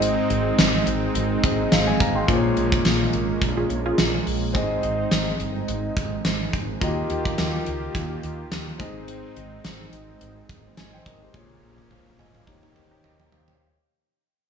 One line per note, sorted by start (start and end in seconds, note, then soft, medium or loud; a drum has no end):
0.00 0.14 G#1 medium
0.00 0.55 G#2 medium
0.00 6.77 G#3 medium
0.00 1.39 C4 medium
0.00 2.26 C4 medium
0.00 1.40 D#4 medium
0.00 2.26 D#4 medium
0.00 1.40 G#4 medium
0.00 1.41 D#5 medium
0.00 closed hi-hat medium
0.30 0.51 G#1 loud
0.30 closed hi-hat medium
0.58 0.79 G#1 loud
0.58 snare loud
0.58 closed hi-hat medium
0.58 tambourine medium
0.86 1.07 G#1 medium
0.86 closed hi-hat medium
1.15 1.35 G#1 loud
1.15 closed hi-hat medium
1.43 1.64 G#1 loud
1.43 2.28 C4 medium
1.43 2.28 D#4 medium
1.43 2.27 G#4 medium
1.43 1.72 D#5 medium
1.43 kick loud
1.43 closed hi-hat medium
1.72 1.92 G#1 loud
1.72 1.87 C5 medium
1.72 1.87 F5 medium
1.72 snare loud
1.72 closed hi-hat medium
1.72 tambourine medium
1.87 2.00 D#5 medium
1.87 1.99 G#5 medium
2.00 2.21 G#1 loud
2.00 2.15 F5 medium
2.00 2.15 A#5 medium
2.00 kick medium
2.00 closed hi-hat medium
2.15 2.43 G5 medium
2.15 2.42 C6 medium
2.27 2.49 A#1 loud
2.27 3.09 A#2 medium
2.27 4.50 A#3 medium
2.27 4.53 A#3 medium
2.27 4.53 C#4 medium
2.27 4.50 F4 medium
2.27 4.51 G#4 medium
2.27 2.36 C5 medium
2.27 kick loud
2.27 closed hi-hat medium
2.36 4.54 C#5 medium
2.57 2.77 A#1 medium
2.57 closed hi-hat medium
2.72 kick loud
2.85 3.05 A#1 loud
2.85 snare loud
2.85 closed hi-hat loud
2.85 tambourine medium
3.13 3.34 G#1 medium
3.13 closed hi-hat medium
3.42 3.62 A#1 loud
3.42 kick loud
3.42 closed hi-hat medium
3.57 3.68 C#4 medium
3.57 3.68 F4 medium
3.57 3.68 G#4 loud
3.70 3.90 A#1 loud
3.70 closed hi-hat medium
3.86 4.10 C#4 loud
3.86 4.10 F4 loud
3.86 4.10 G#4 loud
3.98 4.18 A#1 loud
3.98 snare loud
3.98 closed hi-hat medium
3.98 tambourine medium
4.27 4.55 A#1 loud
4.27 open hi-hat medium
4.53 4.75 G#1 loud
4.53 5.36 G#2 medium
4.53 6.77 C4 medium
4.53 6.79 C4 medium
4.53 6.77 D#4 medium
4.53 6.79 D#4 medium
4.53 6.77 G#4 medium
4.53 6.78 D#5 medium
4.53 kick loud
4.53 closed hi-hat medium
4.83 5.04 G#1 medium
4.83 closed hi-hat medium
5.11 5.32 G#1 medium
5.11 snare loud
5.11 closed hi-hat medium
5.11 tambourine medium
5.40 5.60 G1 medium
5.40 closed hi-hat medium
5.68 5.88 G#1 loud
5.68 closed hi-hat medium
5.97 6.17 G#1 loud
5.97 kick loud
5.97 closed hi-hat medium
6.25 6.45 G#1 loud
6.25 snare loud
6.25 closed hi-hat medium
6.25 tambourine medium
6.53 6.74 G#1 loud
6.53 kick medium
6.53 closed hi-hat medium
6.80 7.02 D#2 loud
6.80 8.77 D#3 medium
6.80 7.62 D#3 medium
6.80 8.75 A#3 medium
6.80 8.77 A#3 medium
6.80 8.77 F4 medium
6.80 8.75 F4 medium
6.80 6.89 F#4 medium
6.80 8.77 G4 medium
6.80 8.76 D#5 medium
6.80 kick loud
6.80 closed hi-hat medium
6.89 8.79 G4 medium
7.10 7.30 D#2 medium
7.10 closed hi-hat medium
7.25 kick loud
7.38 7.59 D#2 loud
7.38 snare loud
7.38 closed hi-hat medium
7.38 tambourine medium
7.66 7.87 C#2 loud
7.66 closed hi-hat medium
7.95 8.15 D#2 loud
7.95 kick medium
7.95 closed hi-hat medium
8.23 8.44 D#2 loud
8.23 closed hi-hat medium
8.51 8.72 D#2 medium
8.51 snare loud
8.51 closed hi-hat medium
8.51 tambourine medium
8.79 9.20 G#1 loud
8.79 9.61 G#2 medium
8.79 12.44 G#3 medium
8.79 11.02 C4 medium
8.79 11.32 C4 medium
8.79 11.02 D#4 medium
8.79 11.32 D#4 medium
8.79 10.74 G#4 medium
8.79 10.74 D#5 medium
8.79 kick loud
8.79 closed hi-hat medium
9.08 closed hi-hat medium
9.36 9.57 G#1 medium
9.36 closed hi-hat medium
9.64 9.85 G#1 loud
9.64 snare loud
9.64 closed hi-hat medium
9.64 tambourine medium
9.93 10.13 G#1 medium
9.93 closed hi-hat medium
10.21 10.41 G#1 loud
10.21 closed hi-hat medium
10.49 10.70 G#1 loud
10.49 kick medium
10.49 closed hi-hat medium
10.77 10.98 G#1 loud
10.77 10.93 D#5 medium
10.77 10.92 G#5 medium
10.77 snare loud
10.77 closed hi-hat medium
10.77 tambourine medium
10.93 11.06 C5 medium
10.93 11.05 G5 medium
11.06 11.26 G#1 loud
11.06 11.21 A#4 medium
11.06 11.21 D#5 medium
11.06 kick medium
11.06 closed hi-hat medium
11.22 11.49 G4 medium
11.22 11.48 C5 medium
11.33 11.55 A#1 loud
11.33 12.15 A#2 medium
11.33 12.45 A#3 medium
11.33 13.58 A#3 medium
11.33 13.58 C#4 medium
11.33 12.45 F4 medium
11.33 12.45 G#4 medium
11.33 11.90 C#5 medium
11.33 kick loud
11.33 high tom medium
11.50 high tom soft
11.63 11.83 A#1 loud
11.78 high tom medium
11.91 12.11 A#1 loud
11.91 12.18 C5 medium
11.91 12.18 F5 medium
11.91 mid tom medium
12.19 12.40 G#1 medium
12.19 12.34 D#5 medium
12.19 12.34 G#5 medium
12.19 mid tom medium
12.35 12.62 C5 medium
12.35 12.61 F5 medium
12.35 mid tom medium
12.46 12.68 D#2 loud
12.46 13.59 D#3 medium
12.46 13.28 D#3 medium
12.46 13.58 A#3 medium
12.46 13.58 D#4 medium
12.46 13.59 G4 medium
12.46 12.75 G4 medium
12.46 12.76 C#5 medium
12.46 kick medium
12.63 12.74 C#4 medium
12.63 12.74 D#4 medium
12.63 12.74 G4 medium
12.63 mid tom medium
12.76 12.96 D#2 loud
12.76 12.91 G4 medium
12.76 12.91 C5 medium
12.76 mid tom medium
12.91 13.15 C#4 medium
12.91 13.15 D#4 loud
12.91 13.15 G4 loud
12.91 13.04 G4 medium
12.91 13.03 C#5 medium
13.04 13.24 D#2 medium
13.04 13.19 A#4 medium
13.04 13.19 D#5 medium
13.04 floor tom medium
13.20 13.32 C#5 medium
13.20 13.32 G5 medium
13.20 floor tom medium
13.32 13.53 D#2 medium
13.32 13.47 C5 medium
13.32 13.47 F5 medium
13.32 floor tom loud
13.48 13.75 C#5 medium
13.48 13.75 G5 medium
13.48 floor tom medium